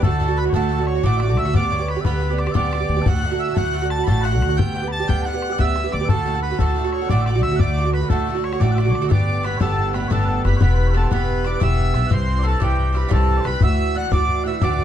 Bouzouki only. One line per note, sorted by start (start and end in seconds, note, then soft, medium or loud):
0.02 0.19 A2 medium
0.02 0.20 D3 medium
0.02 0.21 A3 medium
0.02 0.21 F#4 medium
0.20 0.29 A2 medium
0.20 0.29 D3 medium
0.20 0.29 A3 medium
0.20 0.27 F#4 medium
0.28 0.47 D3 soft
0.28 0.46 A3 medium
0.28 0.44 F#4 medium
0.45 0.53 D3 soft
0.45 0.54 A3 medium
0.45 0.54 F#4 soft
0.54 0.68 A2 medium
0.54 0.70 D3 medium
0.54 0.71 A3 medium
0.54 0.71 F#4 loud
0.69 0.79 A2 medium
0.69 0.79 D3 medium
0.69 0.79 A3 medium
0.69 0.77 F#4 medium
0.78 0.97 D3 soft
0.78 0.96 A3 medium
0.78 0.94 F#4 medium
0.95 1.03 D3 soft
0.95 1.04 A3 medium
0.95 1.04 F#4 medium
1.03 1.19 A2 medium
1.03 1.21 D3 medium
1.03 1.21 A3 loud
1.03 1.22 F#4 loud
1.21 1.29 A2 medium
1.21 1.30 D3 medium
1.21 1.28 A3 medium
1.21 1.27 F#4 medium
1.28 1.47 D3 soft
1.28 1.46 A3 medium
1.28 1.44 F#4 medium
1.45 1.53 D3 soft
1.45 1.55 A3 medium
1.45 1.54 F#4 medium
1.53 1.69 G2 medium
1.53 1.71 D3 medium
1.53 1.72 B3 medium
1.53 1.72 G4 medium
1.71 1.80 G2 medium
1.71 1.80 D3 medium
1.71 1.79 B3 medium
1.71 1.78 G4 medium
1.79 1.98 D3 soft
1.79 1.97 B3 soft
1.79 1.95 G4 soft
1.96 2.04 D3 soft
1.96 2.05 B3 soft
1.96 2.05 G4 medium
2.05 2.19 G2 medium
2.05 2.21 D3 medium
2.05 2.22 B3 medium
2.05 2.23 G4 medium
2.21 2.30 G2 medium
2.21 2.31 D3 medium
2.21 2.30 B3 medium
2.21 2.29 G4 medium
2.30 2.48 D3 soft
2.30 2.47 B3 medium
2.30 2.45 G4 medium
2.46 2.53 D3 soft
2.46 2.54 B3 soft
2.46 2.55 G4 medium
2.54 2.70 G2 medium
2.54 2.71 D3 medium
2.54 2.72 B3 medium
2.54 2.73 G4 medium
2.71 2.81 G2 medium
2.71 2.81 D3 medium
2.71 2.81 B3 medium
2.71 2.79 G4 medium
2.80 2.98 D3 soft
2.80 2.97 B3 soft
2.80 2.95 G4 medium
2.96 3.06 D3 soft
2.96 3.07 B3 medium
2.96 3.06 G4 medium
3.06 3.22 A2 medium
3.06 3.23 D3 medium
3.06 3.24 A3 medium
3.06 3.24 F#4 medium
3.23 3.32 A2 medium
3.23 3.32 D3 medium
3.23 3.32 A3 medium
3.23 3.30 F#4 medium
3.31 3.50 D3 soft
3.31 3.49 A3 medium
3.31 3.47 F#4 medium
3.48 3.56 D3 soft
3.48 3.56 A3 soft
3.48 3.57 F#4 medium
3.56 3.72 A2 medium
3.56 3.73 D3 medium
3.56 3.74 A3 medium
3.56 3.74 F#4 medium
3.74 3.82 A2 medium
3.74 3.82 D3 medium
3.74 3.82 A3 medium
3.74 3.81 F#4 medium
3.82 4.00 D3 soft
3.82 3.99 A3 medium
3.82 3.97 F#4 medium
3.98 4.06 D3 soft
3.98 4.07 A3 soft
3.98 4.07 F#4 medium
4.07 4.22 A2 medium
4.07 4.23 D3 medium
4.07 4.24 A3 medium
4.07 4.25 F#4 medium
4.23 4.32 A2 medium
4.23 4.33 D3 medium
4.23 4.33 A3 medium
4.23 4.31 F#4 medium
4.32 4.51 D3 soft
4.32 4.50 A3 soft
4.32 4.47 F#4 medium
4.49 4.56 D3 soft
4.49 4.58 A3 medium
4.49 4.57 F#4 medium
4.57 4.72 G2 medium
4.57 4.73 D3 medium
4.57 4.74 B3 medium
4.57 4.75 G4 medium
4.73 4.82 G2 medium
4.73 4.83 D3 medium
4.73 4.82 B3 medium
4.73 4.81 G4 medium
4.82 5.01 D3 soft
4.82 5.00 B3 medium
4.82 4.98 G4 medium
5.00 5.07 D3 soft
5.00 5.08 B3 soft
5.00 5.08 G4 medium
5.08 5.24 G2 medium
5.08 5.25 D3 medium
5.08 5.26 B3 medium
5.08 5.26 G4 medium
5.25 5.33 G2 medium
5.25 5.34 D3 medium
5.25 5.34 B3 medium
5.25 5.32 G4 medium
5.33 5.51 D3 medium
5.33 5.50 B3 medium
5.33 5.48 G4 medium
5.49 5.57 D3 soft
5.49 5.58 B3 soft
5.49 5.58 G4 soft
5.58 5.74 G2 medium
5.58 5.75 D3 medium
5.58 5.76 B3 medium
5.58 5.76 G4 medium
5.75 5.83 G2 medium
5.75 5.84 D3 medium
5.75 5.84 B3 medium
5.75 5.83 G4 medium
5.84 6.02 D3 soft
5.84 6.01 B3 medium
5.84 5.99 G4 medium
6.01 6.09 D3 soft
6.01 6.10 B3 medium
6.01 6.09 G4 medium
6.10 6.25 A2 medium
6.10 6.26 D3 medium
6.10 6.27 A3 medium
6.10 6.27 F#4 medium
6.26 6.34 A2 medium
6.26 6.35 D3 medium
6.26 6.35 A3 medium
6.26 6.34 F#4 medium
6.35 6.53 D3 soft
6.35 6.51 A3 medium
6.35 6.50 F#4 medium
6.51 6.59 D3 soft
6.51 6.60 A3 soft
6.51 6.59 F#4 medium
6.60 6.75 A2 medium
6.60 6.76 D3 medium
6.60 6.77 A3 medium
6.60 6.77 F#4 medium
6.76 6.84 A2 medium
6.76 6.85 D3 medium
6.76 6.85 A3 medium
6.76 6.83 F#4 medium
6.84 7.03 D3 soft
6.84 7.02 A3 medium
6.84 7.00 F#4 medium
7.01 7.10 D3 soft
7.01 7.11 A3 soft
7.01 7.10 F#4 medium
7.11 7.26 A2 medium
7.11 7.27 D3 medium
7.11 7.27 A3 medium
7.11 7.28 F#4 loud
7.27 7.35 A2 medium
7.27 7.36 D3 medium
7.27 7.36 A3 medium
7.27 7.34 F#4 medium
7.35 7.53 D3 medium
7.35 7.52 A3 medium
7.35 7.50 F#4 medium
7.51 7.60 D3 soft
7.51 7.61 A3 medium
7.51 7.60 F#4 medium
7.60 7.76 A2 medium
7.60 7.77 D3 medium
7.60 7.77 A3 medium
7.60 7.78 F#4 medium
7.77 7.85 A2 medium
7.77 7.86 D3 medium
7.77 7.85 A3 medium
7.77 7.83 F#4 medium
7.84 8.03 D3 soft
7.84 8.02 A3 soft
7.84 8.00 F#4 medium
8.01 8.10 D3 soft
8.01 8.11 A3 soft
8.01 8.10 F#4 soft
8.10 8.26 A2 medium
8.10 8.27 D3 medium
8.10 8.28 A3 medium
8.10 8.28 F#4 medium
8.27 8.35 A2 medium
8.27 8.36 D3 medium
8.27 8.35 A3 medium
8.27 8.34 F#4 medium
8.35 8.53 D3 medium
8.35 8.52 A3 medium
8.35 8.51 F#4 medium
8.52 8.61 D3 soft
8.52 8.61 A3 soft
8.52 8.60 F#4 medium
8.61 8.76 A2 medium
8.61 8.77 D3 medium
8.61 8.78 A3 medium
8.61 8.78 F#4 medium
8.77 8.85 A2 medium
8.77 8.86 D3 medium
8.77 8.86 A3 medium
8.77 8.84 F#4 medium
8.85 9.03 D3 medium
8.85 9.02 A3 medium
8.85 9.01 F#4 medium
9.02 9.09 D3 medium
9.02 9.10 A3 medium
9.02 9.10 F#4 medium
9.09 9.42 A2 medium
9.09 9.43 D3 medium
9.09 9.45 B3 medium
9.09 9.46 G4 medium
9.43 9.59 A2 medium
9.43 9.60 D3 medium
9.43 9.60 B3 medium
9.43 9.61 G4 medium
9.60 9.92 A2 medium
9.60 9.93 D3 medium
9.60 9.95 B3 medium
9.60 9.95 G4 medium
9.93 10.09 A2 medium
9.93 10.10 D3 medium
9.93 10.10 B3 medium
9.93 10.11 G4 medium
10.10 10.43 A2 medium
10.10 10.44 D3 medium
10.10 10.45 B3 medium
10.10 10.46 G4 medium
10.44 10.60 A2 medium
10.44 10.60 D3 medium
10.44 10.61 B3 medium
10.44 10.61 G4 medium
10.60 10.92 G2 medium
10.60 10.94 E3 medium
10.60 10.94 B3 medium
10.60 10.96 G4 medium
10.93 11.10 G2 medium
10.93 11.11 E3 medium
10.93 11.11 B3 medium
10.93 11.12 G4 medium
11.11 11.43 G2 medium
11.11 11.45 E3 medium
11.11 11.45 B3 medium
11.11 11.47 G4 medium
11.44 11.59 G2 medium
11.44 11.60 E3 medium
11.44 11.61 B3 medium
11.44 11.61 G4 medium
11.60 11.93 G2 medium
11.60 11.94 E3 medium
11.60 11.94 B3 medium
11.60 11.95 G4 medium
11.94 12.08 G2 medium
11.94 12.09 E3 medium
11.94 12.11 B3 medium
11.94 12.10 G4 medium
12.09 12.41 G2 medium
12.09 12.43 E3 medium
12.09 12.43 C4 medium
12.09 12.44 G4 medium
12.43 12.59 G2 medium
12.43 12.60 E3 medium
12.43 12.60 C4 medium
12.43 12.61 G4 medium
12.60 12.91 G2 medium
12.60 12.94 E3 medium
12.60 12.94 C4 medium
12.60 12.95 G4 medium
12.93 13.07 G2 medium
12.93 13.08 E3 medium
12.93 13.09 C4 medium
12.93 13.10 G4 medium
13.09 13.43 G2 loud
13.09 13.44 E3 medium
13.09 13.44 C4 medium
13.09 13.45 G4 loud
13.44 13.61 G2 medium
13.44 13.61 E3 medium
13.44 13.62 C4 medium
13.44 13.63 G4 medium
13.61 13.93 A2 medium
13.61 13.94 E3 medium
13.61 13.96 D4 medium
13.61 13.96 F#4 medium
13.94 14.11 A2 medium
13.94 14.11 E3 medium
13.94 14.12 D4 medium
13.94 14.13 F#4 medium
14.12 14.43 A2 medium
14.12 14.45 E3 medium
14.12 14.46 D4 medium
14.12 14.46 F#4 medium
14.44 14.60 A2 medium
14.44 14.61 E3 medium
14.44 14.62 D4 medium
14.44 14.63 F#4 medium
14.62 14.84 A2 medium
14.62 14.84 E3 medium
14.62 14.84 D4 medium
14.62 14.84 F#4 loud